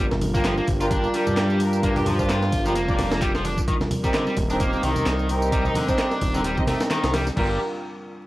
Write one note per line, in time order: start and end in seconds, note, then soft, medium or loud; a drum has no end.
0.00 0.61 G1 loud
0.00 7.33 G3 medium
0.00 3.64 D4 medium
0.00 3.64 F4 medium
0.00 3.64 A#4 medium
0.11 snare medium
0.11 tambourine soft
0.11 muted conga soft
0.11 low conga medium
0.21 closed hi-hat medium
0.21 open hi-hat medium
0.21 high conga medium
0.21 low conga medium
0.34 0.42 A#3 medium
0.34 0.46 D4 medium
0.34 0.46 F4 medium
0.34 0.46 G4 medium
0.34 0.46 A#4 medium
0.34 kick loud
0.34 tambourine medium
0.44 0.54 F3 loud
0.44 snare loud
0.44 clap loud
0.44 closed hi-hat medium
0.44 tambourine medium
0.58 0.65 A#3 medium
0.58 tambourine soft
0.68 1.08 G1 loud
0.68 kick loud
0.68 closed hi-hat medium
0.68 open hi-hat medium
0.81 1.01 D4 medium
0.81 1.01 F4 medium
0.81 0.85 F4 medium
0.81 1.01 G4 medium
0.81 1.01 A#4 loud
0.81 open hi-hat soft
0.81 tambourine medium
0.91 1.13 D4 medium
0.91 kick loud
0.91 closed hi-hat medium
0.91 tambourine soft
0.91 muted conga soft
1.04 tambourine soft
1.14 1.59 G3 medium
1.14 1.35 D4 medium
1.14 1.35 F4 medium
1.14 1.35 G4 medium
1.14 1.35 A#4 medium
1.14 closed hi-hat medium
1.14 open hi-hat medium
1.27 2.54 G2 loud
1.27 tambourine medium
1.27 low conga medium
1.37 snare loud
1.37 clap loud
1.37 closed hi-hat medium
1.37 tambourine soft
1.50 tambourine soft
1.60 2.16 D4 loud
1.60 2.16 F4 medium
1.60 2.16 G4 medium
1.60 2.16 A#4 loud
1.60 closed hi-hat medium
1.60 open hi-hat medium
1.73 tambourine medium
1.83 1.95 A#3 medium
1.83 kick loud
1.83 closed hi-hat medium
1.83 tambourine medium
1.96 2.05 G4 medium
1.96 open hi-hat medium
1.96 tambourine soft
1.96 muted conga soft
1.96 low conga medium
2.06 2.18 F3 medium
2.06 closed hi-hat medium
2.06 open hi-hat medium
2.06 low conga medium
2.19 2.31 D4 loud
2.19 2.31 F4 medium
2.19 2.64 F4 medium
2.19 2.31 G4 medium
2.19 2.31 C5 loud
2.19 kick loud
2.19 tambourine medium
2.29 snare loud
2.29 clap loud
2.29 closed hi-hat medium
2.29 tambourine medium
2.42 snare soft
2.42 tambourine soft
2.52 2.77 G1 loud
2.52 kick loud
2.52 closed hi-hat medium
2.52 open hi-hat medium
2.65 2.73 F3 medium
2.65 2.77 D4 medium
2.65 2.77 F4 medium
2.65 2.77 G4 medium
2.65 2.77 A#4 loud
2.65 tambourine medium
2.75 3.61 F1 medium
2.75 3.21 A#3 medium
2.75 closed hi-hat medium
2.75 tambourine soft
2.88 3.00 D4 loud
2.88 3.00 F4 medium
2.88 3.00 G4 medium
2.88 3.00 D5 loud
2.88 kick loud
2.88 tambourine soft
2.88 muted conga medium
2.98 snare medium
2.98 closed hi-hat medium
2.98 open hi-hat medium
2.98 low conga medium
3.12 snare loud
3.12 tambourine medium
3.22 3.32 G3 medium
3.22 kick loud
3.22 clap loud
3.22 closed hi-hat medium
3.22 tambourine soft
3.35 3.44 F3 medium
3.35 snare medium
3.35 tambourine soft
3.45 3.57 D4 medium
3.45 closed hi-hat medium
3.45 open hi-hat medium
3.45 high conga medium
3.58 kick medium
3.58 tambourine medium
3.68 3.74 D#3 loud
3.68 7.33 C4 medium
3.68 7.33 A#4 medium
3.68 kick loud
3.68 closed hi-hat medium
3.68 tambourine medium
3.81 snare medium
3.81 tambourine soft
3.81 muted conga soft
3.81 low conga medium
3.91 closed hi-hat medium
3.91 open hi-hat medium
3.91 high conga medium
3.91 low conga loud
4.04 4.12 G3 medium
4.04 4.15 C4 medium
4.04 4.15 D#4 medium
4.04 4.15 G4 medium
4.04 4.15 A#4 medium
4.04 kick loud
4.04 tambourine medium
4.14 4.24 D3 loud
4.14 snare loud
4.14 clap loud
4.14 closed hi-hat medium
4.14 tambourine medium
4.27 4.35 G3 medium
4.27 tambourine soft
4.37 4.77 D#1 loud
4.37 kick loud
4.37 closed hi-hat medium
4.37 open hi-hat medium
4.50 4.70 C4 medium
4.50 4.55 D4 medium
4.50 4.70 D#4 medium
4.50 4.70 G4 medium
4.50 4.70 A#4 loud
4.50 open hi-hat medium
4.50 tambourine medium
4.60 4.82 A#3 medium
4.60 kick loud
4.60 closed hi-hat medium
4.60 tambourine medium
4.60 muted conga medium
4.73 tambourine soft
4.83 4.95 C2 loud
4.83 5.28 D#3 medium
4.83 5.04 C4 medium
4.83 5.04 D#4 medium
4.83 5.04 G4 medium
4.83 5.04 A#4 medium
4.83 closed hi-hat medium
4.83 open hi-hat medium
4.96 5.04 C2 soft
4.96 tambourine medium
4.96 low conga medium
5.06 5.69 C2 loud
5.06 snare loud
5.06 clap loud
5.06 closed hi-hat medium
5.06 tambourine medium
5.19 tambourine soft
5.29 5.85 C4 loud
5.29 5.85 D#4 medium
5.29 5.85 G4 medium
5.29 5.85 A#4 loud
5.29 closed hi-hat medium
5.29 open hi-hat medium
5.42 tambourine medium
5.52 5.64 G3 medium
5.52 kick loud
5.52 closed hi-hat medium
5.52 tambourine medium
5.65 5.74 D#4 medium
5.65 tambourine soft
5.65 muted conga soft
5.65 low conga medium
5.75 5.87 D3 medium
5.75 closed hi-hat medium
5.75 open hi-hat medium
5.75 high conga medium
5.75 low conga medium
5.88 6.00 C4 loud
5.88 6.33 D4 medium
5.88 6.00 D#4 medium
5.88 6.00 G4 medium
5.88 6.00 C5 loud
5.88 kick loud
5.88 tambourine medium
5.98 snare loud
5.98 clap loud
5.98 closed hi-hat medium
5.98 tambourine medium
6.11 snare soft
6.11 tambourine soft
6.21 6.61 D#1 loud
6.21 kick loud
6.21 closed hi-hat medium
6.21 open hi-hat medium
6.34 6.42 D3 medium
6.34 6.46 C4 medium
6.34 6.46 D#4 medium
6.34 6.46 G4 medium
6.34 6.46 A#4 loud
6.34 tambourine medium
6.44 6.56 G3 medium
6.44 closed hi-hat medium
6.44 tambourine medium
6.57 6.66 C4 loud
6.57 6.66 D#4 medium
6.57 6.66 G4 medium
6.57 6.66 D#5 loud
6.57 kick loud
6.57 tambourine soft
6.57 muted conga medium
6.67 6.80 A3 medium
6.67 6.82 C4 medium
6.67 6.82 D#4 medium
6.67 6.82 G4 medium
6.67 6.82 A#4 medium
6.67 snare medium
6.67 closed hi-hat medium
6.67 open hi-hat medium
6.67 low conga loud
6.80 snare loud
6.80 tambourine medium
6.90 7.02 D#3 loud
6.90 snare loud
6.90 clap loud
6.90 closed hi-hat medium
6.90 tambourine medium
7.04 7.31 C2 loud
7.04 7.11 D#3 medium
7.04 snare loud
7.04 closed hi-hat medium
7.04 tambourine soft
7.14 7.26 G3 medium
7.14 snare loud
7.14 closed hi-hat medium
7.14 open hi-hat medium
7.14 high conga medium
7.27 snare soft
7.27 tambourine medium
7.37 7.58 G1 loud
7.37 7.58 G3 medium
7.37 7.59 G3 medium
7.37 7.55 D4 medium
7.37 7.59 D4 medium
7.37 7.55 F4 medium
7.37 7.59 F4 medium
7.37 7.55 G4 medium
7.37 7.55 A#4 loud
7.37 7.59 A#4 medium
7.37 kick loud
7.37 crash medium